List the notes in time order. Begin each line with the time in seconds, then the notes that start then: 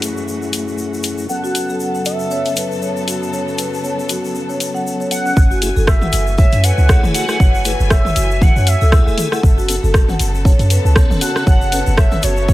Already playing: F#2 E3 A3 C#4 E4 F#4 G#4, downlifter
0.02 open hi-hat, shaker
0.17 shaker
0.28 shaker
0.42 shaker
0.53 open hi-hat, shaker
0.68 shaker
0.78 shaker
0.94 shaker
1.03 open hi-hat, shaker
1.18 shaker
1.29 F#2 C#3 F#3 B3 C#4 A4 F#5, shaker
1.44 F#4, shaker
1.55 open hi-hat, shaker
1.69 A4, shaker
1.80 shaker
1.95 F#5, shaker
2.05 E5, open hi-hat, shaker
2.19 shaker
2.31 C#5, shaker
2.45 open hi-hat, shaker
2.56 B4, open hi-hat, shaker
2.71 shaker
2.82 C#5, shaker
2.97 shaker
3.08 F#4, open hi-hat, shaker
3.23 shaker
3.33 C#5, shaker
3.48 shaker
3.58 B4, open hi-hat, shaker
3.74 shaker
3.84 C#5, shaker
3.99 shaker
4.09 F#4, open hi-hat, shaker
4.25 shaker
4.35 shaker
4.49 C#5, shaker
4.60 open hi-hat, shaker
4.74 F#5, shaker
4.87 shaker
5.00 C#5, shaker
5.11 F#5, open hi-hat, shaker
5.26 C#4, shaker
5.37 F#1 E3 A3 G#5, kick, shaker
5.51 F#4, shaker
5.62 A3 E4 G#4, open hi-hat, shaker
5.76 F#1 A4, shaker
5.87 E5, kick, cross-stick, shaker
6.02 A3 E4 G#4 F#5, mid tom, shaker
6.13 F#1, open hi-hat, shaker
6.27 shaker
6.38 A3 E4 F#4 C#5 E5, kick, shaker
6.52 F#2, open hi-hat, shaker
6.64 B4 F#5, open hi-hat, shaker
6.78 C#2, shaker
6.89 A3 E4 G#4, kick, cross-stick, shaker
7.03 E1, mid tom, shaker
7.14 F#4 F#5, open hi-hat, shaker
7.29 A3 E4 G#4, cross-stick, shaker
7.40 F#1 C#5, kick, shaker
7.55 shaker
7.65 A3 E4 G#4 B4, open hi-hat, shaker
7.80 F#1, shaker
7.90 C#5 E5, kick, cross-stick, shaker
8.05 A3 E4 G#4, mid tom, shaker
8.16 F#1 F#4, open hi-hat, shaker
8.31 shaker
8.41 A3 E4 F#4 F#5, kick, mid tom, shaker
8.56 F#2 C#5, shaker
8.67 E5, open hi-hat, shaker
8.81 C#2 A4, shaker
8.92 A3 E4 G#4, kick, cross-stick, shaker
9.07 E1 A4, shaker
9.18 open hi-hat, mid tom, shaker
9.32 A3 E4 G#4 F#5, cross-stick, shaker
9.43 F#1 C#3 B3 A4, kick, shaker
9.58 F#4, shaker
9.68 B3 C#4 A4, open hi-hat, shaker
9.83 F#1 A4, shaker
9.94 kick, cross-stick, shaker
10.09 B3 C#4 A4 F#5, mid tom, shaker
10.19 F#1, open hi-hat, shaker
10.35 shaker
10.45 B3 C#4 F#4 C#5, kick, shaker
10.59 F#2, open hi-hat, shaker
10.70 B4, open hi-hat, shaker
10.85 C#2, shaker
10.96 B3 C#4 A4 C#5, kick, cross-stick, shaker
11.10 E1, mid tom, shaker
11.21 F#4 F#5, open hi-hat, shaker
11.36 B3 C#4 A4, cross-stick, shaker
11.47 F#1 C#5, kick, shaker
11.61 shaker
11.72 B3 C#4 A4 B4, open hi-hat, shaker
11.86 F#1, shaker
11.97 C#5 E5, kick, cross-stick, shaker
12.12 B3 C#4 A4, mid tom, shaker
12.23 F#1 F#4 C#5, open hi-hat, shaker
12.37 shaker
12.48 B3 C#4 F#4, kick, mid tom, shaker